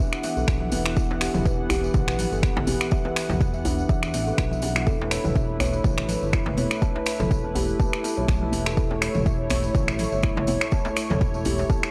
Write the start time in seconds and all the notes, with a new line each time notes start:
Already playing: E3 B3 F#5
0.00 E5
0.12 finger snap, tambourine
0.23 E5, open hi-hat, tambourine, high conga
0.37 B1 A4, tambourine, muted conga
0.48 B1, finger snap, kick, tambourine, djembe bass
0.61 E5, low conga
0.72 E1, open hi-hat, tambourine, muted conga, djembe tone, high conga
0.86 E4, finger snap
0.96 E4, kick, tambourine, high conga
1.11 muted conga, djembe slap
1.21 G4, finger snap, open hi-hat, tambourine
1.34 E1, mid tom, tambourine, djembe tone, low conga
1.45 B4, kick, tambourine
1.59 muted conga
1.70 G4, finger snap, open hi-hat, tambourine, djembe tone, high conga, djembe bass
1.83 G4, tambourine
1.94 A1, kick, mid tom, tambourine, muted conga, djembe tone
2.08 B4, finger snap, tambourine
2.19 open hi-hat, tambourine, low conga
2.32 G1 A4, tambourine, muted conga
2.43 B3, finger snap, kick, tambourine
2.57 mid tom, djembe slap, djembe tone
2.67 E1 G4, open hi-hat, tambourine, muted conga, high conga, djembe tone
2.80 finger snap, tambourine
2.91 E5, kick, tambourine, high conga
3.05 B4, djembe slap, muted conga
3.16 finger snap, open hi-hat, tambourine
3.29 E1 E4, mid tom, tambourine, djembe slap, djembe tone, low conga
3.41 kick, tambourine
3.54 E5, tambourine, muted conga
3.65 D4, open hi-hat, tambourine, high conga, djembe tone, djembe bass
3.79 tambourine
3.89 E2 E5, kick, tambourine, muted conga, high conga
4.03 finger snap, tambourine
4.14 A1 E5, open hi-hat, tambourine, high conga
4.27 A4, tambourine, muted conga
4.38 B1, finger snap, kick, tambourine, djembe bass
4.51 E5, tambourine, low conga
4.62 open hi-hat, tambourine, muted conga, djembe tone, high conga
4.76 E4, finger snap, tambourine
4.86 E1 A3 E4 A4 B4, kick, tambourine, high conga
5.00 muted conga, djembe slap
5.11 C#5, finger snap, open hi-hat, tambourine
5.24 E1, mid tom, tambourine, djembe tone, low conga
5.36 E5, kick, tambourine
5.50 muted conga
5.60 C#5, finger snap, open hi-hat, tambourine, high conga, djembe tone, djembe bass
5.73 C#5, tambourine
5.84 A1, kick, mid tom, tambourine, muted conga, djembe tone
5.98 E5, finger snap, tambourine
6.09 open hi-hat, tambourine, low conga
6.22 G1 C#5, tambourine, muted conga
6.33 E4, finger snap, kick, tambourine
6.46 mid tom, djembe slap, djembe tone
6.57 E1 C#5, open hi-hat, tambourine, muted conga, djembe tone, high conga
6.71 finger snap, tambourine
6.82 A5, kick, tambourine, high conga
6.95 E5, djembe slap, muted conga
7.06 finger snap, open hi-hat, tambourine
7.20 E1 A4, mid tom, tambourine, djembe slap, djembe tone, low conga
7.31 kick, tambourine
7.44 A5, muted conga
7.55 G4, open hi-hat, tambourine, djembe tone, high conga, djembe bass
7.69 tambourine
7.80 A5, kick, tambourine, muted conga, high conga
7.93 finger snap, tambourine
8.04 A5, open hi-hat, tambourine, high conga
8.17 B1 C#5, tambourine, muted conga
8.28 B1, finger snap, kick, tambourine, djembe bass
8.42 A5, low conga
8.52 E1, open hi-hat, tambourine, muted conga, high conga, djembe tone
8.66 A4, finger snap, tambourine
8.77 A4 C#5, kick, tambourine, high conga
8.90 muted conga, djembe slap
9.02 C#5, finger snap, open hi-hat, tambourine
9.14 E1, mid tom, tambourine, djembe tone, low conga
9.26 E5, kick, tambourine
9.39 muted conga
9.50 C#5, finger snap, open hi-hat, tambourine, high conga, djembe tone, djembe bass
9.64 C#5, tambourine
9.75 A1, kick, mid tom, tambourine, muted conga, djembe tone
9.88 E5, finger snap, tambourine
9.99 open hi-hat, tambourine, low conga
10.12 G1 C#5, tambourine, muted conga
10.22 E4, finger snap, kick, tambourine
10.37 mid tom, djembe slap, djembe tone
10.47 E1 C#5, open hi-hat, tambourine, muted conga, djembe tone, high conga
10.61 finger snap, tambourine
10.71 A5, kick, tambourine, high conga
10.85 E5, tambourine, djembe slap, muted conga
10.96 finger snap, open hi-hat, tambourine
11.10 E1 A4, mid tom, tambourine, djembe slap, high conga, djembe tone, low conga
11.21 kick, tambourine
11.34 A5, tambourine, muted conga
11.45 G4, open hi-hat, tambourine, djembe tone, high conga, djembe bass
11.58 tambourine, djembe slap
11.70 A5, kick, tambourine, muted conga, high conga
11.83 finger snap, tambourine